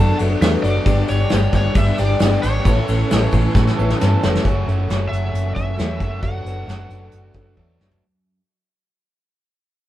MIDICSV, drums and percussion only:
0, 0, Header, 1, 2, 480
1, 0, Start_track
1, 0, Tempo, 448096
1, 924, Time_signature, 4, 2, 24, 8
1, 10592, End_track
2, 0, Start_track
2, 0, Title_t, "Drums"
2, 202, Note_on_c, 9, 49, 64
2, 219, Note_on_c, 9, 82, 68
2, 309, Note_off_c, 9, 49, 0
2, 326, Note_off_c, 9, 82, 0
2, 443, Note_on_c, 9, 49, 81
2, 447, Note_on_c, 9, 82, 88
2, 453, Note_on_c, 9, 38, 117
2, 550, Note_off_c, 9, 49, 0
2, 554, Note_off_c, 9, 82, 0
2, 560, Note_off_c, 9, 38, 0
2, 683, Note_on_c, 9, 49, 62
2, 702, Note_on_c, 9, 82, 64
2, 790, Note_off_c, 9, 49, 0
2, 810, Note_off_c, 9, 82, 0
2, 919, Note_on_c, 9, 49, 78
2, 921, Note_on_c, 9, 36, 114
2, 930, Note_on_c, 9, 82, 83
2, 1026, Note_off_c, 9, 49, 0
2, 1028, Note_off_c, 9, 36, 0
2, 1037, Note_off_c, 9, 82, 0
2, 1154, Note_on_c, 9, 49, 59
2, 1182, Note_on_c, 9, 82, 70
2, 1261, Note_off_c, 9, 49, 0
2, 1290, Note_off_c, 9, 82, 0
2, 1388, Note_on_c, 9, 49, 77
2, 1397, Note_on_c, 9, 38, 105
2, 1424, Note_on_c, 9, 82, 88
2, 1495, Note_off_c, 9, 49, 0
2, 1504, Note_off_c, 9, 38, 0
2, 1531, Note_off_c, 9, 82, 0
2, 1631, Note_on_c, 9, 49, 60
2, 1639, Note_on_c, 9, 36, 89
2, 1641, Note_on_c, 9, 38, 34
2, 1653, Note_on_c, 9, 82, 63
2, 1738, Note_off_c, 9, 49, 0
2, 1746, Note_off_c, 9, 36, 0
2, 1748, Note_off_c, 9, 38, 0
2, 1761, Note_off_c, 9, 82, 0
2, 1870, Note_on_c, 9, 49, 87
2, 1879, Note_on_c, 9, 36, 119
2, 1887, Note_on_c, 9, 82, 87
2, 1977, Note_off_c, 9, 49, 0
2, 1986, Note_off_c, 9, 36, 0
2, 1994, Note_off_c, 9, 82, 0
2, 2118, Note_on_c, 9, 49, 65
2, 2131, Note_on_c, 9, 82, 70
2, 2225, Note_off_c, 9, 49, 0
2, 2238, Note_off_c, 9, 82, 0
2, 2352, Note_on_c, 9, 49, 91
2, 2361, Note_on_c, 9, 38, 122
2, 2370, Note_on_c, 9, 82, 94
2, 2459, Note_off_c, 9, 49, 0
2, 2468, Note_off_c, 9, 38, 0
2, 2477, Note_off_c, 9, 82, 0
2, 2600, Note_on_c, 9, 49, 64
2, 2612, Note_on_c, 9, 82, 80
2, 2707, Note_off_c, 9, 49, 0
2, 2719, Note_off_c, 9, 82, 0
2, 2841, Note_on_c, 9, 49, 81
2, 2842, Note_on_c, 9, 36, 102
2, 2847, Note_on_c, 9, 82, 110
2, 2948, Note_off_c, 9, 49, 0
2, 2949, Note_off_c, 9, 36, 0
2, 2955, Note_off_c, 9, 82, 0
2, 3085, Note_on_c, 9, 82, 85
2, 3089, Note_on_c, 9, 49, 63
2, 3192, Note_off_c, 9, 82, 0
2, 3196, Note_off_c, 9, 49, 0
2, 3326, Note_on_c, 9, 49, 86
2, 3331, Note_on_c, 9, 82, 104
2, 3335, Note_on_c, 9, 38, 109
2, 3433, Note_off_c, 9, 49, 0
2, 3438, Note_off_c, 9, 82, 0
2, 3443, Note_off_c, 9, 38, 0
2, 3554, Note_on_c, 9, 82, 68
2, 3565, Note_on_c, 9, 36, 84
2, 3571, Note_on_c, 9, 49, 69
2, 3661, Note_off_c, 9, 82, 0
2, 3672, Note_off_c, 9, 36, 0
2, 3678, Note_off_c, 9, 49, 0
2, 3802, Note_on_c, 9, 36, 119
2, 3808, Note_on_c, 9, 38, 71
2, 3810, Note_on_c, 9, 82, 89
2, 3909, Note_off_c, 9, 36, 0
2, 3916, Note_off_c, 9, 38, 0
2, 3918, Note_off_c, 9, 82, 0
2, 3934, Note_on_c, 9, 38, 65
2, 4041, Note_off_c, 9, 38, 0
2, 4059, Note_on_c, 9, 82, 70
2, 4166, Note_off_c, 9, 82, 0
2, 4181, Note_on_c, 9, 38, 73
2, 4288, Note_off_c, 9, 38, 0
2, 4295, Note_on_c, 9, 82, 86
2, 4299, Note_on_c, 9, 38, 90
2, 4402, Note_off_c, 9, 82, 0
2, 4406, Note_off_c, 9, 38, 0
2, 4534, Note_on_c, 9, 82, 63
2, 4536, Note_on_c, 9, 38, 96
2, 4641, Note_off_c, 9, 82, 0
2, 4643, Note_off_c, 9, 38, 0
2, 4664, Note_on_c, 9, 38, 81
2, 4768, Note_on_c, 9, 36, 99
2, 4770, Note_on_c, 9, 42, 71
2, 4771, Note_off_c, 9, 38, 0
2, 4875, Note_off_c, 9, 36, 0
2, 4877, Note_off_c, 9, 42, 0
2, 5018, Note_on_c, 9, 42, 55
2, 5125, Note_off_c, 9, 42, 0
2, 5248, Note_on_c, 9, 42, 74
2, 5258, Note_on_c, 9, 38, 98
2, 5355, Note_off_c, 9, 42, 0
2, 5365, Note_off_c, 9, 38, 0
2, 5493, Note_on_c, 9, 42, 61
2, 5600, Note_off_c, 9, 42, 0
2, 5729, Note_on_c, 9, 42, 82
2, 5836, Note_off_c, 9, 42, 0
2, 5959, Note_on_c, 9, 36, 75
2, 5965, Note_on_c, 9, 42, 62
2, 6066, Note_off_c, 9, 36, 0
2, 6072, Note_off_c, 9, 42, 0
2, 6199, Note_on_c, 9, 42, 77
2, 6209, Note_on_c, 9, 38, 104
2, 6306, Note_off_c, 9, 42, 0
2, 6316, Note_off_c, 9, 38, 0
2, 6431, Note_on_c, 9, 42, 59
2, 6432, Note_on_c, 9, 36, 81
2, 6538, Note_off_c, 9, 42, 0
2, 6539, Note_off_c, 9, 36, 0
2, 6666, Note_on_c, 9, 42, 74
2, 6671, Note_on_c, 9, 36, 92
2, 6773, Note_off_c, 9, 42, 0
2, 6778, Note_off_c, 9, 36, 0
2, 6919, Note_on_c, 9, 42, 59
2, 7026, Note_off_c, 9, 42, 0
2, 7163, Note_on_c, 9, 42, 71
2, 7173, Note_on_c, 9, 38, 96
2, 7270, Note_off_c, 9, 42, 0
2, 7280, Note_off_c, 9, 38, 0
2, 7391, Note_on_c, 9, 42, 58
2, 7498, Note_off_c, 9, 42, 0
2, 7622, Note_on_c, 9, 42, 82
2, 7729, Note_off_c, 9, 42, 0
2, 7857, Note_on_c, 9, 42, 58
2, 7868, Note_on_c, 9, 36, 77
2, 7964, Note_off_c, 9, 42, 0
2, 7975, Note_off_c, 9, 36, 0
2, 8112, Note_on_c, 9, 36, 49
2, 8219, Note_off_c, 9, 36, 0
2, 8365, Note_on_c, 9, 38, 71
2, 8472, Note_off_c, 9, 38, 0
2, 8477, Note_on_c, 9, 43, 65
2, 8584, Note_off_c, 9, 43, 0
2, 10592, End_track
0, 0, End_of_file